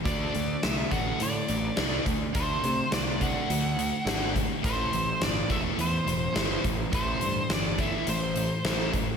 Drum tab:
HH |xxxxxxxx|xxxxxxxx|xxxxxxxx|xxxxxxxx|
SD |--o---o-|--o---o-|--o---o-|--o---o-|
BD |o--o---o|o--o---o|o--o---o|o--o---o|